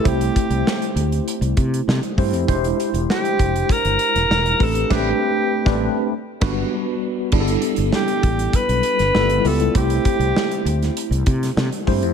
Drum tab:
CC |----------------|----------------|x---------x-----|x---------------|
HH |xxxx-xxxxxxx-xox|xxxx-xxxxxxx-xox|----------------|-xxx-xxxxxxx-xox|
SD |----o-------o---|----o------oo---|o----o----o-----|----o------oo---|
BD |o-o-------o---o-|o-----o-o-----o-|o----o----o-----|o-----o-o-------|

CC |----------------|
HH |xxxx-xxxxxxx-xox|
SD |----o--o---oo---|
BD |o-o-------o---o-|